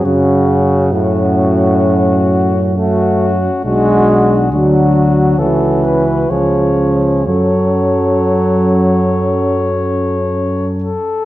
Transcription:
X:1
M:4/4
L:1/8
Q:1/4=65
K:F#m
V:1 name="Cornet"
F2 F4 F2 | F2 F2 A B c2 | c6- c A |]
V:2 name="French horn section"
F2 F4 F2 | F2 F2 F2 G2 | A6- A z |]
V:3 name="Euphonium"
C2 C4 C2 | D2 D2 C2 C2 | C6- C z |]
V:4 name="Trombone" clef=bass
C,2 A,,4 A, z | G,2 F,2 E,2 ^E,2 | F,6- F, z |]
V:5 name="Tuba" clef=bass
F,,8 | B,,,2 D,,2 C,,2 C,,2 | F,,6- F,, z |]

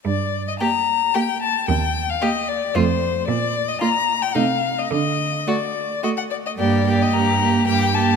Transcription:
X:1
M:3/4
L:1/16
Q:1/4=111
K:Gm
V:1 name="Violin"
d3 e b4 g2 a2 | g3 f e2 d2 c4 | d3 e b3 g f3 e | e4 d4 e ^f d e |
d3 e b4 g2 a2 |]
V:2 name="Violin"
z4 G4 G4 | z4 G4 F4 | z4 F4 E4 | z4 ^F4 F4 |
G2 G2 G2 G2 G2 G2 |]
V:3 name="Viola"
z4 B,4 B,4 | z4 B,4 A,4 | z4 B,4 A,4 | z4 A,4 A,4 |
B,2 B,2 B,2 B,2 B,2 B,2 |]
V:4 name="Cello" clef=bass
G,,4 z8 | E,,4 z4 F,,4 | B,,4 z4 C,4 | D,4 z8 |
G,,4 G,,4 G,,4 |]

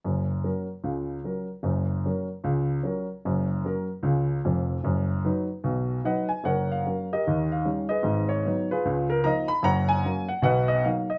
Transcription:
X:1
M:4/4
L:1/8
Q:"Swing" 1/4=150
K:F#
V:1 name="Upright piano"
z8 | z8 | z8 | z6 [df] g |
[Acf] e2 [=GAd]2 e2 [^GBd]- | [GBd] c2 [EGB]2 A [dea] b | [cfa] g2 f [Bdf] d e d |]
V:2 name="Upright piano" clef=bass
[F,,,F,,]2 [F,CA]2 [C,,C,]2 [F,CA]2 | [F,,,F,,]2 [F,CA]2 [C,,C,]2 [F,CA]2 | [F,,,F,,]2 [F,CA]2 [C,,C,]2 [E,,,E,,]2 | [F,,,F,,]2 [F,DB]2 [B,,,B,,]2 [F,DB]2 |
[F,,,F,,]2 [F,CA]2 [D,,D,]2 [=G,CD]2 | [G,,,G,,]2 [F,B,D]2 [C,,C,]2 [E,A,D]2 | [F,,,F,,]2 [F,A,C]2 [B,,,B,,]2 [F,A,D]2 |]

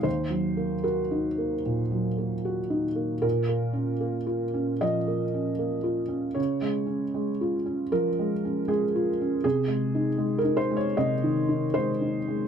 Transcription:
X:1
M:4/4
L:1/16
Q:1/4=77
K:Bbm
V:1 name="Felt piano"
c4 B8- B2 z2 | B8 e8 | d8 B4 A4 | A4- A B c d e4 c4 |]
V:2 name="Felt piano"
(3E,,2 G,2 B,2 (3G2 E2 B,2 (3B,,2 G,2 B,2 (3G2 E2 B,2 | (3B,,2 B,2 D2 (3B,2 F2 D2 (3F,2 B,2 D2 (3B,2 F2 D2 | (3D,2 A,2 D2 (3A,2 F2 D2 (3F,2 A,2 D2 (3A,2 F2 D2 | (3C,2 A,2 E2 (3A,2 E2 A,2 (3C,2 E,2 E2 (3A,2 E2 A,2 |]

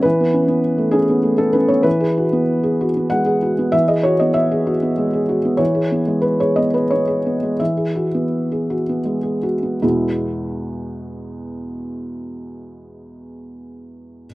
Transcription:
X:1
M:3/4
L:1/16
Q:1/4=91
K:E
V:1 name="Felt piano"
B6 G3 A B c | B8 f4 | e d c d e8 | c4 B c d B c4 |
e8- e2 z2 | [E,,B,,G,B,EF]12- | [E,,B,,G,B,EF]12 |]
V:2 name="Felt piano"
E, B, C B,2 A, C B, A, B, C B, | E, G F B,2 G F B, G, G F B, | E, G F B,2 G F B, G, G F B, | E, G B, G,2 G B, G, B, G B, G, |
E, G F B,2 G F B, G, G F B, | z12 | z12 |]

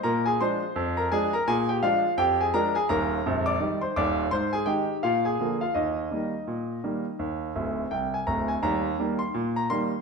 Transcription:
X:1
M:2/4
L:1/16
Q:"Swing 16ths" 1/4=84
K:Eb
V:1 name="Grand piano"
[Bb] [Aa] [cc']3 [Bb] [Aa] [Bb] | [Aa] [Gg] [Ff]2 [Gg] [Aa] [Bb] [Aa] | [Bb]3 [dd']2 [cc'] [dd']2 | [cc'] [Aa] [Gg]2 [Ff] [Aa]2 [Ff] |
[Ee]8- | [Ee]4 g a b a | b3 c'2 b c'2 |]
V:2 name="Grand piano" clef=bass
B,,2 [F,A,D]2 F,,2 [F,A,D]2 | B,,2 [F,A,D]2 F,,2 [F,A,D]2 | [E,,,E,,]2 [B,,,,B,,,]2 [E,G,E]2 [E,,,E,,]2 | A,,2 [E,A,E]2 B,,2 [D,F,B,]2 |
E,,2 [E,G,B,]2 B,,2 [E,G,B,]2 | E,,2 [D,,,D,,]2 C,,2 [D,,,D,,]2 | [E,,G,]2 [E,G,B,]2 B,,2 [E,G,B,]2 |]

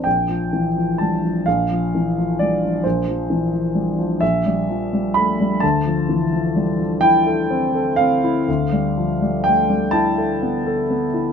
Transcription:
X:1
M:6/8
L:1/16
Q:3/8=42
K:Gdor
V:1 name="Grand piano"
g4 a2 f4 d2 | c6 e4 =b2 | a6 g4 f2- | f4 g2 a2 z4 |]
V:2 name="Grand piano" clef=bass
B,,, F, E, F, G, F, B,,, F, E, F, G, F, | B,,, F, E, F, G, F, B,,, G, F, G, A, G, | D,, F, E, F, G, F, E A C A C E | D,, G, F, G, A, G, E A =B, A B, E |]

